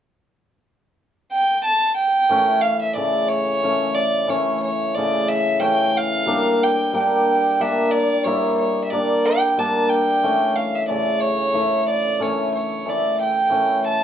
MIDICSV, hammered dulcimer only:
0, 0, Header, 1, 2, 480
1, 0, Start_track
1, 0, Tempo, 662983
1, 232, Time_signature, 3, 2, 24, 8
1, 5032, Tempo, 657895
1, 10202, End_track
2, 0, Start_track
2, 0, Title_t, "Hammered dulcimer"
2, 0, Program_c, 0, 15
2, 1661, Note_on_c, 0, 52, 75
2, 1668, Note_on_c, 0, 57, 68
2, 1675, Note_on_c, 0, 61, 100
2, 1912, Note_off_c, 0, 57, 0
2, 1915, Note_off_c, 0, 61, 0
2, 2128, Note_off_c, 0, 52, 0
2, 2136, Note_on_c, 0, 52, 54
2, 2149, Note_on_c, 0, 49, 59
2, 2149, Note_on_c, 0, 57, 53
2, 2392, Note_off_c, 0, 57, 0
2, 2617, Note_off_c, 0, 52, 0
2, 2625, Note_on_c, 0, 52, 60
2, 2635, Note_on_c, 0, 57, 56
2, 2639, Note_on_c, 0, 61, 68
2, 2875, Note_off_c, 0, 57, 0
2, 2877, Note_off_c, 0, 61, 0
2, 3088, Note_off_c, 0, 52, 0
2, 3096, Note_on_c, 0, 52, 71
2, 3102, Note_on_c, 0, 57, 56
2, 3110, Note_on_c, 0, 61, 70
2, 3348, Note_off_c, 0, 57, 0
2, 3352, Note_off_c, 0, 61, 0
2, 3580, Note_off_c, 0, 52, 0
2, 3589, Note_on_c, 0, 52, 57
2, 3595, Note_off_c, 0, 49, 0
2, 3603, Note_on_c, 0, 57, 51
2, 3604, Note_on_c, 0, 49, 64
2, 3838, Note_off_c, 0, 57, 0
2, 4044, Note_off_c, 0, 52, 0
2, 4053, Note_on_c, 0, 52, 64
2, 4063, Note_on_c, 0, 57, 60
2, 4066, Note_on_c, 0, 61, 70
2, 4307, Note_off_c, 0, 57, 0
2, 4308, Note_off_c, 0, 61, 0
2, 4532, Note_on_c, 0, 55, 74
2, 4538, Note_on_c, 0, 58, 70
2, 4546, Note_on_c, 0, 62, 76
2, 4587, Note_off_c, 0, 49, 0
2, 4587, Note_off_c, 0, 52, 0
2, 4783, Note_off_c, 0, 58, 0
2, 4788, Note_off_c, 0, 62, 0
2, 5007, Note_off_c, 0, 55, 0
2, 5016, Note_on_c, 0, 55, 61
2, 5023, Note_on_c, 0, 58, 56
2, 5035, Note_on_c, 0, 62, 59
2, 5267, Note_off_c, 0, 58, 0
2, 5273, Note_off_c, 0, 62, 0
2, 5494, Note_off_c, 0, 55, 0
2, 5503, Note_on_c, 0, 55, 65
2, 5513, Note_on_c, 0, 58, 57
2, 5514, Note_on_c, 0, 62, 75
2, 5753, Note_off_c, 0, 58, 0
2, 5753, Note_off_c, 0, 62, 0
2, 5973, Note_off_c, 0, 55, 0
2, 5982, Note_on_c, 0, 55, 72
2, 5990, Note_on_c, 0, 58, 63
2, 5995, Note_on_c, 0, 64, 77
2, 6231, Note_off_c, 0, 58, 0
2, 6234, Note_off_c, 0, 64, 0
2, 6458, Note_off_c, 0, 55, 0
2, 6467, Note_on_c, 0, 55, 59
2, 6473, Note_on_c, 0, 58, 57
2, 6482, Note_on_c, 0, 62, 68
2, 6713, Note_off_c, 0, 58, 0
2, 6718, Note_off_c, 0, 62, 0
2, 6938, Note_off_c, 0, 55, 0
2, 6947, Note_on_c, 0, 55, 64
2, 6953, Note_on_c, 0, 58, 61
2, 6961, Note_on_c, 0, 62, 69
2, 7193, Note_off_c, 0, 58, 0
2, 7197, Note_off_c, 0, 62, 0
2, 7426, Note_on_c, 0, 52, 60
2, 7431, Note_on_c, 0, 57, 62
2, 7434, Note_on_c, 0, 61, 71
2, 7470, Note_off_c, 0, 55, 0
2, 7672, Note_off_c, 0, 57, 0
2, 7673, Note_off_c, 0, 61, 0
2, 7894, Note_off_c, 0, 52, 0
2, 7903, Note_on_c, 0, 52, 53
2, 7906, Note_on_c, 0, 57, 54
2, 7917, Note_on_c, 0, 49, 52
2, 8149, Note_off_c, 0, 57, 0
2, 8371, Note_off_c, 0, 52, 0
2, 8378, Note_on_c, 0, 57, 61
2, 8380, Note_on_c, 0, 52, 58
2, 8385, Note_on_c, 0, 64, 59
2, 8625, Note_off_c, 0, 57, 0
2, 8628, Note_off_c, 0, 64, 0
2, 8852, Note_off_c, 0, 52, 0
2, 8860, Note_on_c, 0, 52, 66
2, 8861, Note_on_c, 0, 57, 69
2, 8867, Note_on_c, 0, 61, 73
2, 9105, Note_off_c, 0, 57, 0
2, 9108, Note_off_c, 0, 61, 0
2, 9332, Note_off_c, 0, 52, 0
2, 9341, Note_on_c, 0, 52, 52
2, 9345, Note_on_c, 0, 57, 49
2, 9357, Note_on_c, 0, 64, 56
2, 9586, Note_off_c, 0, 57, 0
2, 9592, Note_off_c, 0, 64, 0
2, 9801, Note_off_c, 0, 52, 0
2, 9810, Note_on_c, 0, 52, 71
2, 9818, Note_on_c, 0, 57, 55
2, 9824, Note_on_c, 0, 61, 64
2, 10062, Note_off_c, 0, 57, 0
2, 10065, Note_off_c, 0, 61, 0
2, 10202, Note_off_c, 0, 49, 0
2, 10202, Note_off_c, 0, 52, 0
2, 10202, End_track
0, 0, End_of_file